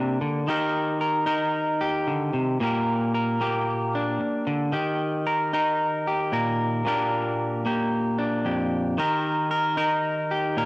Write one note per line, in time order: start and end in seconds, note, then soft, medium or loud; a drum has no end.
0.00 0.21 C3 medium
0.00 0.47 A#3 medium
0.00 0.45 D4 medium
0.00 0.48 G4 medium
0.00 0.49 A#4 medium
0.21 0.48 D3 medium
0.47 2.60 D#3 medium
0.47 1.25 D#4 medium
0.47 1.80 G4 medium
0.47 1.01 A#4 medium
1.01 1.27 A#4 medium
1.26 2.57 D#4 medium
1.26 2.63 A#4 medium
1.81 2.63 G4 medium
2.07 2.33 D3 medium
2.33 2.60 C3 medium
2.60 4.19 A#2 medium
2.60 3.40 A#3 medium
2.60 3.41 G4 medium
2.60 3.14 A#4 medium
2.60 muted clean electric guitar stroke medium
3.14 5.26 A#4 medium
3.41 4.72 A#3 medium
3.41 4.73 G4 medium
3.95 4.71 D4 medium
4.21 muted clean electric guitar stroke medium
4.47 4.73 D3 medium
4.72 6.85 D#3 medium
4.72 6.07 G4 medium
5.27 5.54 A#4 medium
5.53 6.82 D#4 medium
5.53 6.33 A#4 medium
6.07 6.87 G4 medium
6.32 6.82 A#2 medium
6.32 6.88 A#4 medium
6.85 8.97 A#2 medium
6.85 7.65 A#3 medium
6.85 8.17 D4 medium
6.85 7.66 G4 medium
6.85 8.99 A#4 medium
7.66 8.97 A#3 medium
7.66 8.45 G4 medium
8.19 8.95 D4 medium
8.45 8.98 F2 medium
8.45 8.99 G4 soft
8.98 10.65 D#3 medium
8.98 9.76 D#4 soft
8.98 10.31 G4 soft
8.98 9.51 A#4 medium
9.51 9.77 A#4 medium
9.77 10.65 D#4 medium
9.77 10.57 A#4 medium
10.31 10.65 G4 medium
10.57 10.65 A#2 medium
10.57 10.65 A#4 medium